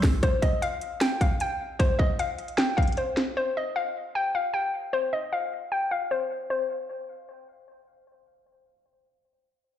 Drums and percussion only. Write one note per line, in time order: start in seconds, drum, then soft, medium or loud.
0.03 kick loud
0.03 snare medium
0.03 open hi-hat medium
0.23 kick loud
0.23 closed hi-hat medium
0.42 kick medium
0.42 closed hi-hat medium
0.62 closed hi-hat medium
0.81 closed hi-hat medium
1.01 snare loud
1.01 closed hi-hat medium
1.21 kick loud
1.21 closed hi-hat medium
1.40 closed hi-hat medium
1.80 kick loud
1.80 closed hi-hat medium
1.99 kick loud
2.19 closed hi-hat medium
2.38 closed hi-hat medium
2.48 closed hi-hat medium
2.58 snare loud
2.58 closed hi-hat medium
2.78 kick medium
2.78 closed hi-hat soft
2.83 closed hi-hat medium
2.87 closed hi-hat medium
2.92 closed hi-hat medium
2.97 closed hi-hat medium
3.17 snare medium
3.17 closed hi-hat medium